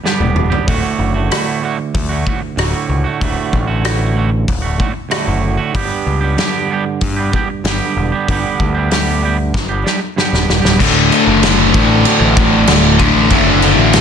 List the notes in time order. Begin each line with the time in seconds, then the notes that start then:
0.04 G2 D3 G3 B3 D4 G4, snare
0.20 D#1, high tom
0.36 mid tom
0.50 G3 B3 D4 G4, floor tom
0.66 D1 D2 A2 D3 A3 F#4, kick, open hi-hat
0.99 F#1
1.14 D3 A3 F#4
1.29 D2 A2 D3 A3 F#4, cross-stick, open hi-hat
1.61 A2 D3 A3 F#4
1.79 muted clean electric guitar stroke
1.94 D2, kick, open hi-hat
2.09 D3 A3 F#4
2.25 A2 D3 A3 F#4, kick
2.41 muted clean electric guitar stroke
2.56 D1 D2 A2 D3 A3 F#4, cross-stick, open hi-hat
2.89 C#2
3.04 D3 A3 F#4
3.20 D1 D2 A2 D3 A3 F#4, kick, open hi-hat
3.52 A1, kick
3.67 D3 A3 F#4
3.82 D2 A2 D3 A3 F#4, cross-stick, open hi-hat
4.15 A2 D3 A3 F#4
4.31 muted clean electric guitar stroke
4.48 D1, kick, open hi-hat
4.62 D3 A3 F#4
4.78 A2 D3 A3 F#4, kick
4.94 muted clean electric guitar stroke
5.09 D2 A2 D3 A3 F#4, cross-stick, open hi-hat
5.28 F#1
5.57 D3 A3 F#4
5.73 G1 G2 G3 B3 D4 G4, kick, open hi-hat
6.06 C#2
6.21 B3 D4 G4
6.25 G3
6.37 G2 D3 G3 B3 D4 G4, snare, open hi-hat
6.70 G3 B3 D4 G4
6.85 muted clean electric guitar stroke
7.01 G2, kick, open hi-hat
7.16 G3 B3 D4 G4
7.32 G3 B3 D4, kick
7.36 G4
7.50 muted clean electric guitar stroke
7.64 G1 G2 D3 G3 B3 D4 G4, snare, open hi-hat
7.97 E1
8.12 G3 B3 D4 G4
8.28 G1 G2 D3 G3 B3 D4 G4, kick, open hi-hat
8.59 D2, kick
8.74 G3 B3 D4 G4
8.90 G2 D3 G3 B3 D4 G4, snare, open hi-hat
9.21 G3 B3 D4 G4
9.38 muted clean electric guitar stroke
9.54 G1, kick, snare
9.69 G3 B3 D4 G4
9.84 G3 B3 D4 G4, snare
10.01 muted clean electric guitar stroke
10.16 G2 D3 G3 B3 D4 G4, snare
10.33 D#1, snare
10.48 E1, snare
10.62 D1 G3 B3 D4 G4, snare
10.80 D1 D2 A2 D3 A3 D4 F#4 D5, kick, crash
11.12 D2 A2 D3, crash
11.27 F#1
11.43 D2 A2 D3, snare, crash
11.74 A1 D2 A2 D3, kick, crash
12.05 D2 A2 D3, crash
12.20 A1
12.37 D2 A2 D3, kick, crash
12.67 D1 D2 A2 D3, snare, crash
12.99 D2 A2 D3, kick, crash
13.15 A1
13.30 F#1 D2 A2 D3 E5, kick, crash
13.62 D2 A2 D3, crash
13.78 A1
13.93 D2 A2 D3, snare, crash